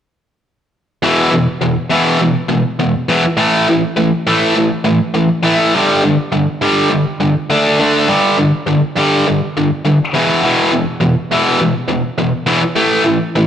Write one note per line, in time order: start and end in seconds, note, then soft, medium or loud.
1.03 1.30 E2 medium
1.03 1.31 B2 medium
1.03 1.32 E3 medium
1.31 1.45 E2 medium
1.31 1.46 B2 medium
1.61 1.75 E2 medium
1.61 1.75 B2 medium
1.90 2.18 E2 medium
1.90 2.19 B2 medium
1.90 2.20 E3 medium
2.19 2.33 E2 medium
2.19 2.34 B2 medium
2.49 2.63 E2 medium
2.49 2.63 B2 medium
2.79 2.93 E2 medium
2.79 2.93 B2 medium
3.09 3.23 E2 medium
3.09 3.23 B2 medium
3.09 3.24 E3 medium
3.37 3.66 A2 medium
3.37 3.67 E3 medium
3.37 3.68 A3 medium
3.68 3.81 A2 medium
3.68 3.81 E3 medium
3.97 4.10 A2 medium
3.97 4.10 E3 medium
4.27 4.55 A2 medium
4.27 4.56 E3 medium
4.27 4.56 A3 loud
4.56 4.69 A2 medium
4.56 4.70 E3 medium
4.84 4.98 A2 medium
4.84 4.99 E3 medium
5.14 5.28 A2 medium
5.14 5.28 E3 medium
5.43 5.72 A2 medium
5.43 5.72 E3 medium
5.43 5.73 A3 medium
5.74 6.02 G2 medium
5.74 6.02 D3 medium
5.74 6.03 G3 medium
6.03 6.16 G2 medium
6.03 6.16 D3 medium
6.32 6.45 G2 medium
6.32 6.46 D3 medium
6.62 6.88 G2 medium
6.62 6.89 D3 medium
6.62 6.90 G3 medium
6.90 7.03 G2 medium
6.90 7.04 D3 medium
7.20 7.34 G2 medium
7.20 7.34 D3 medium
7.50 7.78 D3 medium
7.50 7.79 A3 medium
7.50 7.79 D4 medium
7.79 8.08 D3 medium
7.79 8.08 A3 medium
7.79 8.08 D4 medium
8.08 8.37 G2 medium
8.08 8.37 D3 medium
8.08 8.37 G3 medium
8.38 8.51 G2 medium
8.38 8.51 D3 medium
8.67 8.80 G2 medium
8.67 8.80 D3 medium
8.97 9.25 G2 medium
8.97 9.25 D3 medium
8.97 9.25 G3 loud
9.27 9.39 G2 medium
9.27 9.39 D3 medium
9.57 9.69 G2 medium
9.57 9.69 D3 medium
9.85 9.98 G2 medium
9.85 9.98 D3 medium
10.14 10.42 E2 medium
10.14 10.42 B2 medium
10.14 10.42 E3 medium
10.43 10.71 E2 medium
10.43 10.71 B2 medium
10.43 10.72 E3 loud
10.72 10.85 E2 medium
10.72 10.85 B2 medium
11.00 11.14 E2 medium
11.00 11.14 B2 medium
11.32 11.59 E2 medium
11.32 11.60 B2 medium
11.32 11.60 E3 medium
11.60 11.73 E2 medium
11.60 11.73 B2 medium
11.88 12.02 E2 medium
11.88 12.02 B2 medium
12.18 12.31 E2 medium
12.18 12.31 B2 medium
12.47 12.60 E2 medium
12.47 12.60 B2 medium
12.47 12.61 E3 loud
12.76 13.03 A2 medium
12.76 13.03 E3 medium
12.76 13.05 A3 medium
13.04 13.18 A2 medium
13.04 13.18 E3 medium
13.36 13.47 A2 medium
13.36 13.47 E3 medium